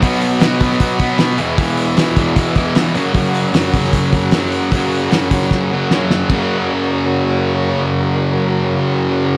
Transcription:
<<
  \new Staff \with { instrumentName = "Transistor combo organ" } { \time 4/4 \key fis \mixolydian \tempo 4 = 153 <fis' b' dis''>2.~ <fis' b' dis''>8 <gis' b' e''>8~ | <gis' b' e''>2.~ <gis' b' e''>8 <fis' ais' cis''>8~ | <fis' ais' cis''>1~ | <fis' ais' cis''>2.~ <fis' ais' cis''>8 r8 |
<fis' ais' cis''>1~ | <fis' ais' cis''>1 | }
  \new Staff \with { instrumentName = "Distorted electric guitar" } { \clef bass \time 4/4 \key fis \mixolydian <b, fis b>4 <b, fis b>8 <fis b>4 <fis b>8 <b, fis b>8 <e, b, e>8 | <e, b, e>4 <e, b, e>8 <b, e>4 <b, e>8 <e, b, e>8 <fis, cis fis>8 | <fis, cis fis>4 <fis, cis fis>8 <cis fis>4 <cis fis>8 <fis, cis fis>4 | <fis, cis fis>4 <fis, cis fis>8 <cis fis>4 <cis fis>8 <fis, cis fis>4 |
<fis, cis fis>1~ | <fis, cis fis>1 | }
  \new DrumStaff \with { instrumentName = "Drums" } \drummode { \time 4/4 <hho bd>8 hho8 <hho sn>8 <hho bd>16 sn16 <hho bd>8 <hho bd>8 <hho sn>8 hho8 | <hho bd>8 hho8 <hho sn>8 <hho bd>8 <hho bd>8 <hho bd>8 <hho sn>8 hho8 | <hho bd>8 hho8 <hho sn>8 <hho bd>16 sn16 <hho bd>8 <hho bd>8 <hho sn>8 hho8 | <hho bd>8 hho8 <hho sn>8 <hho bd>16 sn16 <bd sn>4 sn8 sn8 |
<cymc bd>4 r4 r4 r4 | r4 r4 r4 r4 | }
>>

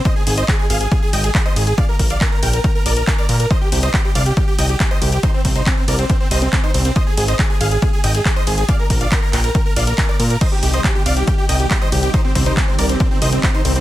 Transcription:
<<
  \new Staff \with { instrumentName = "Supersaw synth" } { \time 4/4 \key c \minor \tempo 4 = 139 <c'' ees''>16 aes'16 aes'16 <c'' ees''>16 aes'16 aes'16 <aes' f''>16 aes'16 aes'16 aes'16 <ees'' g''>16 aes'16 aes'16 <c'' ees''>16 aes'16 aes'16 | <d'' f''>16 bes'16 bes'16 <d'' f''>16 bes'16 bes'16 <bes' g''>16 bes'16 bes'16 bes'16 <bes' d''>16 bes'16 bes'16 <bes' d''>16 bes'16 bes'16 | <c'' ees''>16 g'16 g'16 <c'' ees''>16 g'16 g'16 <d'' f''>16 g'16 g'16 g'16 <ees'' g''>16 g'16 r16 <c'' ees''>16 g'16 g'16 | <ees' c''>16 c'16 c'16 <ees' c''>16 c'16 c'16 <bes' d''>16 c'16 c'16 c'16 <c'' ees''>16 c'16 c'16 <ees' c''>16 c'16 c'16 |
<c'' ees''>16 aes'16 aes'16 <c'' ees''>16 aes'16 aes'16 <aes' f''>16 aes'16 aes'16 aes'16 <ees'' g''>16 aes'16 aes'16 <c'' ees''>16 aes'16 aes'16 | <d'' f''>16 bes'16 bes'16 <d'' f''>16 bes'16 bes'16 <bes' g''>16 bes'16 bes'16 bes'16 <d'' f''>16 bes'16 bes'16 <bes' d''>16 bes'16 bes'16 | <c'' ees''>16 g'16 g'16 <c'' ees''>16 g'16 g'16 <d'' f''>16 g'16 g'16 g'16 <ees'' g''>16 g'16 g'16 <c'' ees''>16 g'16 g'16 | <ees' c''>16 c'16 c'16 <ees' c''>16 r16 c'16 <bes' d''>16 c'16 c'16 c'16 <c'' ees''>16 c'16 c'16 <ees' c''>16 c'16 c'16 | }
  \new Staff \with { instrumentName = "Analog synth pad" } { \clef bass \time 4/4 \key c \minor r1 | r1 | r1 | r1 |
r1 | r1 | <c ees g ees' g'>1~ | <c ees g ees' g'>1 | }
  \new Staff \with { instrumentName = "Analog synth bass" } { \clef bass \time 4/4 \key c \minor r8 aes,,8 r8 aes,,8 r8 aes,,8 r8 aes,,8 | r8 bes,,8 r8 bes,,8 r8 bes,,8 r8 bes,8 | r8 c,8 r8 c,8 r8 c,8 r8 c,8 | r8 c,8 r8 c,8 r8 c,8 r8 c,8 |
r8 aes,,8 r8 aes,,8 r8 aes,,8 r8 aes,,8 | r8 bes,,8 r8 bes,,8 r8 bes,,8 r8 bes,8 | r8 c,8 r8 c,8 r8 c,8 r8 c,8 | r8 c,8 r8 c,8 r8 c,8 r8 c,8 | }
  \new DrumStaff \with { instrumentName = "Drums" } \drummode { \time 4/4 <hh bd>8 <hho cymr>16 hh16 <hc hh bd>8 <hho cymr>16 hh16 <hh bd>8 <hho cymr>16 hh16 <hc hh bd>8 <hho cymr>16 hh16 | <hh bd>8 <hho bd cymr>16 hh16 <hc hh bd>8 <hho cymr>16 hh16 <hh bd>8 <hho cymr>16 hh16 <hc hh bd>8 <hho cymr>16 hh16 | <hh bd>8 <hho cymr>16 hh16 <hc hh bd>8 <hho cymr>16 hh16 <hh bd>8 <hho cymr>16 hh16 <hc hh bd>8 <hho cymr>16 hh16 | <hh bd>8 <hho bd cymr>16 hh16 <hc hh bd>8 <hho cymr>16 hh16 <hh bd>8 <hho cymr>16 hh16 <hc hh bd>8 <hho cymr>16 hh16 |
<hh bd>8 <hho cymr>16 hh16 <hc hh bd>8 <hho cymr>16 hh16 <hh bd>8 <hho cymr>16 hh16 <hc hh bd>8 <hho cymr>16 hh16 | <hh bd>8 <hho bd cymr>16 hh16 <hc hh bd>8 <hc hho cymr>16 hh16 <hh bd>8 <hho cymr>16 hh16 <hc hh bd>8 <hho cymr>16 hh16 | <cymc hh bd>8 <hho cymr>16 hh16 <hc hh bd>8 <hho cymr>16 hh16 <hh bd>8 <hho cymr>16 hh16 <hc hh bd>8 <hho cymr>16 hh16 | <hh bd>8 <hho bd cymr>16 hh16 <hc hh bd>8 <hho cymr>16 hh16 <hh bd>8 <hho cymr>16 hh16 <hc hh bd>8 <hho cymr>16 hh16 | }
>>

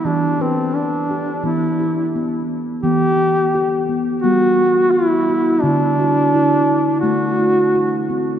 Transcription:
<<
  \new Staff \with { instrumentName = "Duduk" } { \time 4/4 \key e \minor \tempo 4 = 86 d'8 c'8 d'4 e'4 r4 | g'4. r8 fis'4 e'4 | d'2 fis'4. r8 | }
  \new Staff \with { instrumentName = "Steel tongue drum" } { \time 4/4 \key e \minor g'8 b'4 g'8 b8 g'8 b4 | b4 g'8 b8 g8 b4 fis'8 | e'8 fis'8 e'4 fis'8 e'8 fis'8 c'8 | }
  \new Staff \with { instrumentName = "Steel tongue drum" } { \clef bass \time 4/4 \key e \minor e8 d'4. e2 | e2 b2 | d2 a2 | }
>>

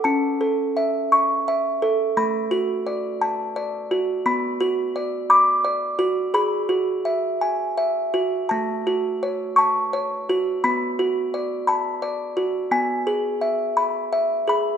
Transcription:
\new Staff \with { instrumentName = "Music box" } { \time 6/8 \key a \major \tempo 4. = 57 << { a''4. cis'''4. | b''4 r2 | b''4. d'''4. | b''4 r8 gis''4 r8 |
a''4. cis'''4. | b''4 r8 a''4 r8 | gis''4. r4 b''8 | } \\ { cis'8 a'8 e''4 e''8 a'8 | a8 fis'8 d''8 a''8 d''8 fis'8 | b8 fis'8 d''8 b''8 d''8 fis'8 | gis'8 fis'8 e''4 e''8 fis'8 |
a8 fis'8 cis''8 a''8 cis''8 fis'8 | b8 fis'8 d''8 b''8 d''8 fis'8 | b8 gis'8 e''8 b''8 e''8 gis'8 | } >> }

